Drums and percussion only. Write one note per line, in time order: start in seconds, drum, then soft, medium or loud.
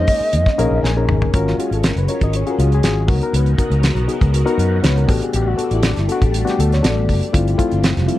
0.07 kick medium
0.07 open hi-hat medium
0.33 closed hi-hat medium
0.46 kick medium
0.46 snare soft
0.59 closed hi-hat medium
0.84 snare medium
1.09 mid tom medium
1.22 floor tom medium
1.34 kick loud
1.34 closed hi-hat medium
1.47 snare soft
1.60 closed hi-hat medium
1.72 closed hi-hat soft
1.84 snare loud
1.84 closed hi-hat medium
1.97 closed hi-hat soft
2.08 closed hi-hat medium
2.21 kick medium
2.21 closed hi-hat soft
2.33 closed hi-hat medium
2.47 closed hi-hat soft
2.60 closed hi-hat medium
2.72 closed hi-hat soft
2.83 snare loud
2.83 closed hi-hat medium
3.08 kick loud
3.08 open hi-hat medium
3.21 closed hi-hat soft
3.34 closed hi-hat medium
3.46 closed hi-hat soft
3.58 kick medium
3.58 closed hi-hat soft
3.71 closed hi-hat soft
3.83 snare medium
3.83 closed hi-hat medium
3.97 closed hi-hat soft
4.09 closed hi-hat medium
4.21 kick medium
4.21 closed hi-hat soft
4.34 closed hi-hat medium
4.47 closed hi-hat soft
4.59 closed hi-hat medium
4.84 snare loud
4.84 closed hi-hat medium
4.97 closed hi-hat soft
5.09 kick medium
5.09 open hi-hat medium
5.22 closed hi-hat soft
5.33 closed hi-hat medium
5.59 closed hi-hat medium
5.71 closed hi-hat soft
5.83 snare loud
5.83 closed hi-hat medium
5.97 snare soft
5.97 closed hi-hat soft
6.09 closed hi-hat medium
6.22 kick medium
6.22 closed hi-hat soft
6.34 closed hi-hat medium
6.47 snare soft
6.47 closed hi-hat soft
6.60 closed hi-hat medium
6.72 snare soft
6.72 closed hi-hat soft
6.84 snare loud
6.84 closed hi-hat medium
7.09 kick medium
7.09 open hi-hat medium
7.23 closed hi-hat soft
7.34 kick loud
7.34 closed hi-hat medium
7.48 closed hi-hat soft
7.59 kick medium
7.59 closed hi-hat medium
7.71 closed hi-hat soft
7.84 snare loud
7.84 closed hi-hat medium
7.97 snare soft
7.97 closed hi-hat soft
8.09 closed hi-hat medium